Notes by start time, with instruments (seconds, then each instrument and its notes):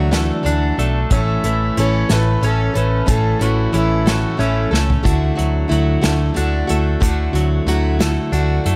Already playing: picked electric bass D2, clean electric guitar D3 F#3 A3 D4, steel-string acoustic guitar E3 A3 D4
0.11 steel-string acoustic guitar D3 E3 A3 D4 F#4, snare, closed hi-hat
0.43 picked electric bass D2, steel-string acoustic guitar E3 A3 D4 F#4, closed hi-hat
0.77 picked electric bass B1, steel-string acoustic guitar A3 D4 F#4, closed hi-hat
1.10 picked electric bass A1, steel-string acoustic guitar A2 E3 A3 C#4 A4, harmonica A4 C#5 E5, kick, closed hi-hat
1.44 picked electric bass A1, clean electric guitar E3, steel-string acoustic guitar A3 C#4 A4, closed hi-hat
1.77 picked electric bass A1, steel-string acoustic guitar E3 A3 C#4 A4, harmonica C#5, closed hi-hat
2.09 picked electric bass A1, steel-string acoustic guitar A2 E3 A3 C#4 A4, harmonica F#4 B4, snare, closed hi-hat
2.41 picked electric bass A1, steel-string acoustic guitar E3 A3 C#4 A4, closed hi-hat
2.46 harmonica A4
2.74 picked electric bass A1, steel-string acoustic guitar A3 C#4 A4, harmonica B4, closed hi-hat
3.06 picked electric bass A1, steel-string acoustic guitar A2 E3 A3 C#4 A4, harmonica A4, kick, closed hi-hat
3.39 picked electric bass A1, clean electric guitar E3, steel-string acoustic guitar A3 C#4 A4, harmonica F#4, closed hi-hat
3.73 picked electric bass A1, steel-string acoustic guitar E3 A3 C#4 A4, closed hi-hat
3.77 harmonica E4
4.06 steel-string acoustic guitar A2 E3 A3 C#4 A4, harmonica F#4, snare, closed hi-hat
4.37 picked electric bass A1, steel-string acoustic guitar E3 A3 C#4 A4, harmonica A3 C#4 E4, closed hi-hat
4.71 picked electric bass C#2, steel-string acoustic guitar A3 C#4 A4, snare
4.90 floor tom
5.03 picked electric bass D2, steel-string acoustic guitar D3 A3 E4 F#4, kick, closed hi-hat
5.35 picked electric bass D2, clean electric guitar F#3, steel-string acoustic guitar A3 E4 F#4, closed hi-hat
5.68 picked electric bass D2, steel-string acoustic guitar D3 A3 E4 F#4, closed hi-hat
5.72 clean electric guitar F#3
6.01 picked electric bass D2, steel-string acoustic guitar D3 A3 E4 F#4, snare, closed hi-hat
6.34 picked electric bass D2, steel-string acoustic guitar D3 A3 E4 F#4, clean electric guitar D4, closed hi-hat
6.67 picked electric bass D2, steel-string acoustic guitar A3 E4 F#4, closed hi-hat
7.00 picked electric bass D2, steel-string acoustic guitar D3 A3 E4 F#4, kick, closed hi-hat
7.33 picked electric bass D2, clean electric guitar F#3, steel-string acoustic guitar A3 E4 F#4, closed hi-hat
7.66 picked electric bass D2, steel-string acoustic guitar D3 A3 E4 F#4, clean electric guitar F#3, closed hi-hat
7.99 steel-string acoustic guitar D3 A3 E4 F#4, snare, closed hi-hat
8.32 picked electric bass D2, steel-string acoustic guitar D3 A3 E4 F#4, clean electric guitar D4, closed hi-hat
8.64 picked electric bass F#2, steel-string acoustic guitar A3 E4 F#4, closed hi-hat